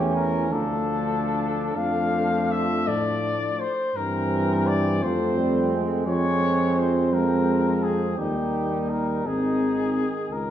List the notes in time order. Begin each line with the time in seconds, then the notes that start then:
Already playing: E2 E3 A3 C#4 G4
0.15 A#4
0.51 D2 F3 A3 D4 A4
1.75 F2 F3 A3 F5
2.51 E5
2.87 A2 D5
3.60 C5
3.95 G2 E3 G3 C4 A#4
4.67 D5
5.03 F2 F3 A3 C4 C5
5.38 G3
5.73 G#3
6.06 F2 F3 C4 C#5
6.78 C5
7.13 F3 G#3 A#4
7.83 G#4
8.17 D#2 G3 A#3 D#4 G4
8.89 A#4
9.26 G#1 D#3 C4 D#4 G#4
10.30 C#2 G#3 C#4 A#4